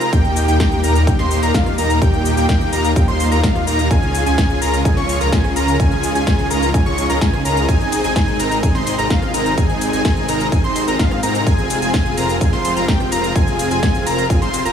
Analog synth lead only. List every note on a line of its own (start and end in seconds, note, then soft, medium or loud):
0.13 0.45 G5 loud
0.48 0.57 G5 loud
0.60 0.81 G5 loud
0.84 1.02 A#5 loud
1.07 1.17 G5 medium
1.19 1.39 C6 loud
1.43 1.52 A#5 medium
1.55 1.75 F5 medium
1.78 1.99 A#5 loud
2.02 2.34 G5 loud
2.37 2.46 G5 loud
2.49 2.70 G5 loud
2.73 2.91 A#5 loud
2.96 3.06 G5 medium
3.08 3.28 C6 loud
3.32 3.41 A#5 loud
3.43 3.64 F5 medium
3.67 3.88 A#5 loud
3.91 4.23 G#5 loud
4.26 4.35 G#5 loud
4.38 4.59 G#5 loud
4.61 4.80 A#5 loud
4.85 4.95 G#5 medium
4.97 5.17 C#6 loud
5.21 5.30 A#5 medium
5.32 5.53 G#5 medium
5.56 5.77 A#5 loud
5.80 6.12 G#5 loud
6.15 6.24 G#5 loud
6.27 6.48 G#5 loud
6.50 6.69 A#5 loud
6.74 6.84 G#5 medium
6.86 7.06 C#6 loud
7.10 7.19 A#5 medium
7.21 7.42 G#5 medium
7.45 7.66 A#5 loud
7.68 8.01 G#5 loud
8.04 8.13 G#5 loud
8.16 8.37 G#5 loud
8.39 8.58 A#5 loud
8.63 8.73 G#5 medium
8.75 8.95 C6 loud
8.98 9.08 A#5 loud
9.10 9.31 F5 medium
9.34 9.55 A#5 loud
9.58 9.90 G#5 loud
9.93 10.02 G#5 loud
10.05 10.26 G#5 loud
10.29 10.47 A#5 loud
10.52 10.62 G#5 medium
10.64 10.84 C6 loud
10.88 10.97 A#5 loud
10.99 11.20 F5 medium
11.23 11.44 A#5 loud
11.47 11.79 G#5 loud
11.82 11.91 G#5 loud
11.94 12.15 G#5 loud
12.17 12.36 A#5 loud
12.41 12.51 G#5 medium
12.53 12.73 C6 loud
12.76 12.85 A#5 medium
12.88 13.09 G5 medium
13.12 13.33 A#5 loud
13.35 13.68 G#5 loud
13.71 13.80 G#5 loud
13.83 14.04 G#5 loud
14.06 14.25 A#5 loud
14.30 14.40 G#5 medium
14.42 14.62 C6 loud
14.65 14.72 A#5 medium